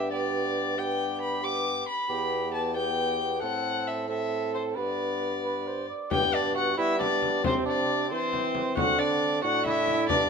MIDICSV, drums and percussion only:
0, 0, Header, 1, 2, 480
1, 0, Start_track
1, 0, Tempo, 443787
1, 835, Time_signature, 6, 3, 24, 8
1, 11134, End_track
2, 0, Start_track
2, 0, Title_t, "Frame drum"
2, 6610, Note_on_c, 9, 64, 77
2, 6718, Note_off_c, 9, 64, 0
2, 7576, Note_on_c, 9, 64, 51
2, 7685, Note_off_c, 9, 64, 0
2, 7813, Note_on_c, 9, 64, 50
2, 7921, Note_off_c, 9, 64, 0
2, 8051, Note_on_c, 9, 64, 78
2, 8159, Note_off_c, 9, 64, 0
2, 9010, Note_on_c, 9, 64, 53
2, 9118, Note_off_c, 9, 64, 0
2, 9244, Note_on_c, 9, 64, 52
2, 9352, Note_off_c, 9, 64, 0
2, 9486, Note_on_c, 9, 64, 72
2, 9594, Note_off_c, 9, 64, 0
2, 10442, Note_on_c, 9, 64, 50
2, 10550, Note_off_c, 9, 64, 0
2, 10680, Note_on_c, 9, 64, 47
2, 10788, Note_off_c, 9, 64, 0
2, 10920, Note_on_c, 9, 64, 81
2, 11028, Note_off_c, 9, 64, 0
2, 11134, End_track
0, 0, End_of_file